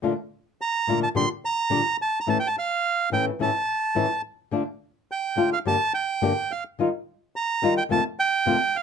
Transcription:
0.02 nylon-string guitar A#2 D3 A3 D4 F4
0.61 bandoneon A#5
0.87 nylon-string guitar A#2 D3 A3 D4 F4
1.03 bandoneon A5
1.15 nylon-string guitar A#2 D3 G3 D4 G4, bandoneon C6
1.45 bandoneon A#5
1.70 nylon-string guitar A#2 D3 G3 D4 G4
2.02 bandoneon A5
2.20 bandoneon A#5
2.27 nylon-string guitar A2 E3 A3 C#4 E4, bandoneon A5
2.40 bandoneon G5
2.47 bandoneon A5
2.59 bandoneon F5
3.12 nylon-string guitar A2 E3 A3 C#4 E4, bandoneon G5
3.39 nylon-string guitar A2 E3 A3 C#4 E4, bandoneon A5
3.95 nylon-string guitar A2 E3 A3 C#4 E4
4.51 nylon-string guitar D3 A3 D4 F4
5.12 bandoneon G5
5.36 nylon-string guitar D3 A3 D4 F4
5.53 bandoneon F5
5.65 nylon-string guitar G2 D3 G3 A#3 D4 G4, bandoneon A5
5.94 bandoneon G5
6.22 nylon-string guitar G2 D3 G3 A#3 D4 G4
6.51 bandoneon F5
6.79 nylon-string guitar D#3 G3 D#4 F4
7.36 bandoneon A#5
7.62 nylon-string guitar D#3 G3 D#4 F4
7.77 bandoneon G5
7.89 nylon-string guitar F2 C3 D#3 A3 C4 F4, bandoneon A5
8.19 bandoneon G5
8.46 nylon-string guitar F2 C3 D#3 A3 C4 F4
8.76 bandoneon F5

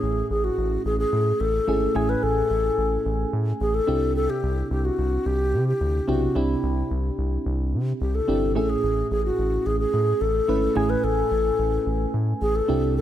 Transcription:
Already playing: fm electric piano A2 A3 C#4 E4 G#4, alto flute G#4
0.03 analog synth bass A1
0.30 analog synth bass A1, alto flute G#4
0.44 alto flute F#4
0.58 analog synth bass A1
0.85 analog synth bass A1, alto flute G#4
0.99 alto flute G#4
1.12 analog synth bass A2
1.40 analog synth bass A1, alto flute A4
1.67 analog synth bass G#1, fm electric piano A3 C#4 E4 G#4
1.95 analog synth bass A1, fm electric piano A2 A3 C#4 E4 G#5, alto flute G#4
2.09 alto flute B4
2.23 analog synth bass A1, alto flute A4
2.50 analog synth bass A1
2.78 analog synth bass A1
3.05 analog synth bass A1
3.33 analog synth bass A2
3.60 analog synth bass A1, alto flute G#4
3.75 alto flute A4
3.87 analog synth bass C2, fm electric piano C3 C4 D4 E4 G4
4.16 alto flute A4
4.30 alto flute G4
4.43 analog synth bass C2
4.70 analog synth bass C2, alto flute G4
4.85 alto flute F#4
4.98 analog synth bass C2
5.26 analog synth bass C2, alto flute G4
5.53 analog synth bass C3
5.68 alto flute G4
5.81 analog synth bass D2
6.08 analog synth bass B1, fm electric piano C3 C4 D4 E4 G4, alto flute F#4
6.35 analog synth bass C2, fm electric piano C4 D4 E4 G4, alto flute E4
6.63 analog synth bass C2
6.91 analog synth bass C2
7.18 analog synth bass C2
7.46 analog synth bass C2
7.73 analog synth bass C3
8.01 analog synth bass C2, alto flute G4
8.15 alto flute A4
8.28 analog synth bass G1, fm electric piano C4 D4 E4 G4
8.55 analog synth bass A1, fm electric piano A2 A3 C#4 E4 G#4, alto flute A4
8.70 alto flute G#4
8.83 analog synth bass A1
9.11 analog synth bass A1, alto flute G#4
9.25 alto flute F#4
9.38 analog synth bass A1
9.66 analog synth bass A1, alto flute G#4
9.80 alto flute G#4
9.93 analog synth bass A2
10.21 analog synth bass A1, alto flute A4
10.48 analog synth bass G#1, fm electric piano A3 C#4 E4 B4
10.75 analog synth bass A1, fm electric piano A2 A3 C#4 E4 G#5, alto flute G#4
10.90 alto flute B4
11.03 analog synth bass A1, alto flute A4
11.31 analog synth bass A1
11.59 analog synth bass A1
11.86 analog synth bass A1
12.14 analog synth bass A2
12.41 analog synth bass A1, alto flute G#4
12.56 alto flute A4
12.68 analog synth bass C2, fm electric piano C3 C4 D4 E4 G4
12.97 alto flute A4

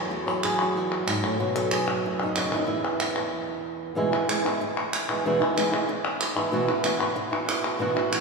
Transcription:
Already playing: nylon-string guitar F#3 B3
0.10 nylon-string guitar E2 F#4
0.26 nylon-string guitar F#3 A4, clap
0.43 nylon-string guitar G#4, clap
0.59 nylon-string guitar F#4, clap
0.75 nylon-string guitar E2 E4
0.92 clap
1.06 nylon-string guitar G#2, clap
1.23 nylon-string guitar A2, clap
1.39 nylon-string guitar B2 F#3 B3 F#4
1.56 nylon-string guitar F#3 A4, clap
1.71 nylon-string guitar G#4, clap
1.87 nylon-string guitar F#4
2.03 nylon-string guitar F#2 E4
2.20 nylon-string guitar D#4, clap
2.36 nylon-string guitar C#3 F#4, clap
2.52 nylon-string guitar D#3 E4, clap
2.57 nylon-string guitar D#4
2.67 nylon-string guitar E2 B3 E4
2.84 nylon-string guitar E3, clap
3.00 nylon-string guitar B3, clap
3.16 nylon-string guitar B3, clap
3.95 nylon-string guitar E2 B2 E3 G#3 B3 E4
4.12 nylon-string guitar E3 G#3 B3 E4, clap
4.28 nylon-string guitar E3 G#3 B3 E4, clap
4.44 nylon-string guitar E3 G#3 B3 E4, clap
4.61 muted nylon-string guitar stroke
4.77 clap
4.93 clap
5.09 nylon-string guitar E3 G#3 B3 E4
5.26 nylon-string guitar E2 B2 E3 G#3 B3 E4
5.40 nylon-string guitar E3 G#3 B3 E4, clap
5.56 nylon-string guitar E3 G#3 B3 E4, clap
5.72 nylon-string guitar E3 G#3 B3 E4, clap
5.88 muted nylon-string guitar stroke
6.05 clap
6.21 clap
6.36 nylon-string guitar E3 G#3 B3 E4, clap
6.52 nylon-string guitar B2 E3 B3 E4 F#4
6.68 nylon-string guitar B3 E4 F#4, clap
6.83 nylon-string guitar E3 B3 E4 F#4, clap
6.99 nylon-string guitar B3 E4 F#4, clap
7.15 muted nylon-string guitar stroke
7.31 nylon-string guitar B3 E4 F#4, clap
7.47 nylon-string guitar B3 E4 F#4, clap
7.64 clap
7.79 nylon-string guitar B2 E3 B3 E4 F#4
7.95 nylon-string guitar B3 E4 F#4, clap
8.11 nylon-string guitar E3 B3 E4 F#4, clap

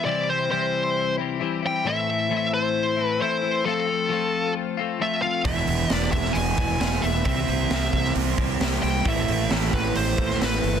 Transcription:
0.05 clean electric guitar C3 E3 G3 C4 E4, lead electric guitar D5
0.28 clean electric guitar G3 C4 E4, lead electric guitar C5
0.49 clean electric guitar C3 E3 G3 C4 E4, lead electric guitar C5
1.18 clean electric guitar G3 C4 E4
1.40 clean electric guitar E3 G3 C4 E4
1.62 clean electric guitar G3 C4 E4
1.67 lead electric guitar G5
1.84 clean electric guitar A2 E3 A3 C4 E4, lead electric guitar E5
2.07 clean electric guitar A3 C4 E4
2.29 clean electric guitar A2 E3 A3 C4 E4
2.54 lead electric guitar C5
2.97 clean electric guitar A3 C4 E4
3.03 lead electric guitar B4
3.20 clean electric guitar E3 A3 C4 E4, lead electric guitar C5
3.41 clean electric guitar A3 C4 E4
3.65 clean electric guitar F3 A3 C4 F4, lead electric guitar A4
3.87 clean electric guitar A3 C4 F4
4.09 clean electric guitar F3 A3 C4 F4
4.77 clean electric guitar A3 C4 F4
5.00 clean electric guitar F3 A3 C4 F4, lead electric guitar E5
5.22 clean electric guitar A3 C4 F4, lead electric guitar F5
5.45 fingered electric bass E1, overdriven electric guitar E2 B2, clean electric guitar E3 G#3 B3, lead electric guitar E5, kick, open hi-hat
5.49 clean electric guitar E4
5.67 fingered electric bass E1, clean electric guitar B3 E4, open hi-hat
5.71 clean electric guitar G#3
5.90 fingered electric bass E1, clean electric guitar E3 G#3 B3 E4, snare, open hi-hat
5.94 lead electric guitar D5
6.12 fingered electric bass E1, lead electric guitar E5, kick, open hi-hat
6.25 snare
6.33 fingered electric bass E1, lead electric guitar G#5, open hi-hat
6.57 fingered electric bass E1, clean electric guitar B3 E4, kick, open hi-hat
6.61 clean electric guitar G#3
6.80 fingered electric bass E1, clean electric guitar E3 G#3 B3 E4, lead electric guitar G#5, snare, open hi-hat
7.02 fingered electric bass E1, clean electric guitar B3 E4, lead electric guitar E5, open hi-hat
7.07 clean electric guitar G#3
7.25 fingered electric bass C2, clean electric guitar C3 E3 G3 C4, lead electric guitar E5, kick, open hi-hat
7.29 clean electric guitar E4
7.48 fingered electric bass C2, clean electric guitar G3 C4 E4, open hi-hat
7.70 fingered electric bass C2, clean electric guitar C3 E3 G3 C4, snare, open hi-hat
7.74 clean electric guitar E4
7.93 fingered electric bass C2, kick, open hi-hat
8.05 snare
8.15 fingered electric bass C2, open hi-hat
8.38 fingered electric bass C2, clean electric guitar G3 C4 E4, kick, open hi-hat
8.60 fingered electric bass C2, clean electric guitar E3 G3 C4 E4, snare, open hi-hat
8.82 fingered electric bass C2, clean electric guitar G3 C4 E4, lead electric guitar G5, open hi-hat
9.05 fingered electric bass A1, clean electric guitar A2 E3 A3 C4 E4, lead electric guitar E5, kick, open hi-hat
9.28 fingered electric bass A1, clean electric guitar A3 C4 E4, open hi-hat
9.49 fingered electric bass A1, clean electric guitar A2 E3 A3 C4 E4, snare, open hi-hat
9.73 fingered electric bass A1, lead electric guitar B4, kick, open hi-hat
9.95 fingered electric bass A1, lead electric guitar C5, open hi-hat
10.17 fingered electric bass A1, clean electric guitar A3 C4 E4, kick, open hi-hat
10.30 snare
10.39 fingered electric bass A1, clean electric guitar E3 A3 C4 E4, snare, open hi-hat
10.45 lead electric guitar B4
10.62 fingered electric bass G1, clean electric guitar A3 C4 E4, open hi-hat

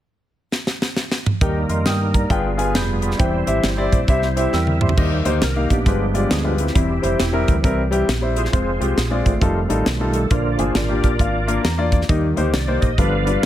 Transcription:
0.52 snare
0.67 snare
0.82 snare
0.96 snare
1.11 snare
1.26 mid tom
1.41 fingered electric bass D#2, grand piano D#3 D#4 G4 A#4 G5, tonewheel organ G3 A#3 D#4 A#4, kick, closed hi-hat
1.69 fingered electric bass F2, grand piano D#5 C6, closed hi-hat
1.86 fingered electric bass G2, grand piano G5 D#6, snare, closed hi-hat
2.14 grand piano D5 A#5, kick, closed hi-hat
2.30 fingered electric bass G1, grand piano G2 F4 G#4 B4 G5, tonewheel organ G3 B3 F4 G#4, kick, closed hi-hat
2.58 grand piano F4 G#4 B4 G#5, closed hi-hat
2.75 fingered electric bass F1, grand piano B5 G6, snare, closed hi-hat
3.02 grand piano D5 B5, closed hi-hat
3.11 snare
3.18 fingered electric bass E1, grand piano E3 E4 G4 C5 G5, tonewheel organ G3 C4 E4 B4, kick, closed hi-hat
3.24 tonewheel organ C5
3.47 fingered electric bass G#1, grand piano E4 G4 C5 E5, closed hi-hat
3.64 fingered electric bass G1, snare, closed hi-hat
3.77 grand piano E4 G4 C5 D5
3.92 fingered electric bass A#1, kick, closed hi-hat
4.08 fingered electric bass C2, grand piano E4 G4 C5 E5, kick, closed hi-hat
4.22 snare
4.36 grand piano E4 G4 C5 E5, closed hi-hat
4.53 fingered electric bass E2, tonewheel organ A#4 E5, grand piano G5 E6, snare
4.67 high tom
4.81 tonewheel organ G4 C5, grand piano E5 C6, mid tom
4.89 floor tom
4.97 fingered electric bass D#2, tonewheel organ D#3 G3 A#3, grand piano D#3 A#3 D#4 G4 D#5, kick, crash
5.25 fingered electric bass D2, grand piano A#3 D#4 G4 C5, closed hi-hat
5.42 fingered electric bass C2, tonewheel organ A#4, snare, closed hi-hat
5.56 grand piano A#3 D#4 G4 F5
5.70 fingered electric bass A#1, tonewheel organ B3 D4 G4, kick, closed hi-hat
5.86 fingered electric bass G1, grand piano G2 G#3 F4 G4 B4, tonewheel organ F3 G#3 B3, kick, closed hi-hat
6.14 grand piano G#3 F4 G4 D5, closed hi-hat
6.31 fingered electric bass D2, tonewheel organ G#4, snare, closed hi-hat
6.44 grand piano G#3 F4 G4 B4
6.58 tonewheel organ C4 E4 G4, closed hi-hat
6.67 snare
6.75 fingered electric bass E1, grand piano E3 G3 C4 E4 C5, kick, closed hi-hat
7.02 fingered electric bass F1, grand piano G3 C4 E4 C5, closed hi-hat
7.20 fingered electric bass E1, snare, closed hi-hat
7.33 grand piano G3 C4 E4 A#4
7.48 fingered electric bass D2, tonewheel organ E3 G3 C4, kick, closed hi-hat
7.63 fingered electric bass C2, grand piano G3 C4 E4 A#4, kick, closed hi-hat
7.91 grand piano G3 C4 E4 G4, closed hi-hat
8.08 fingered electric bass A#1, snare, closed hi-hat
8.21 grand piano G3 C4 E4 C5
8.36 tonewheel organ F4 G#4 C5, closed hi-hat
8.45 snare
8.52 fingered electric bass F1, tonewheel organ F3 G#3 C4, grand piano G#3 C4 F4 C5, kick, closed hi-hat
8.80 fingered electric bass C2, grand piano G#3 C4 F4 G4, closed hi-hat
8.97 fingered electric bass A#1, snare, closed hi-hat
9.10 grand piano G#3 C4 F4 D5
9.26 fingered electric bass G#1, tonewheel organ A3 C4 F4, kick, closed hi-hat
9.41 fingered electric bass F1, tonewheel organ D#3 G3 A3, grand piano G3 D#4 F4 A4, kick, closed hi-hat
9.69 fingered electric bass A1, grand piano G3 D#4 F4 A4, closed hi-hat
9.86 fingered electric bass B1, snare, closed hi-hat
10.00 grand piano G3 D#4 F4 A4
10.13 tonewheel organ A4, closed hi-hat
10.31 fingered electric bass A#1, grand piano A#2 A#3 D4 F4 D5, tonewheel organ D3 F3 A#3 D4 F4 A#4, kick, closed hi-hat
10.52 tonewheel organ D5
10.58 fingered electric bass G1, grand piano A#3 D4 F4 G#4, tonewheel organ C5, closed hi-hat
10.75 fingered electric bass G#1, tonewheel organ F4 A#4 D5, snare, closed hi-hat
10.88 grand piano A#3 D4 F4 G4
11.03 fingered electric bass A#1, kick, closed hi-hat
11.19 fingered electric bass G#1, grand piano A#3 D4 F4 F5, kick, closed hi-hat
11.47 grand piano A#3 D4 F4 A#4, closed hi-hat
11.64 fingered electric bass E2, grand piano A#5, snare, closed hi-hat
11.78 grand piano A#3 D4 F4 D5
11.92 kick, closed hi-hat
12.02 snare
12.09 fingered electric bass D#2, grand piano D#3 A#3 D#4 G4 D#5, tonewheel organ D#3 G3 A#3, kick, closed hi-hat
12.36 fingered electric bass D2, grand piano A#3 D#4 G4 C5, closed hi-hat
12.54 fingered electric bass C2, tonewheel organ D5, snare, closed hi-hat
12.67 grand piano A#3 D#4 G4 C5
12.81 fingered electric bass A#1, tonewheel organ D#5, kick, closed hi-hat
12.98 fingered electric bass G1, grand piano G2 G3 D4 F4 B4, tonewheel organ D3 F3 B3 B4 D5 F5, kick, closed hi-hat
13.26 grand piano G3 D4 F4 B4, closed hi-hat

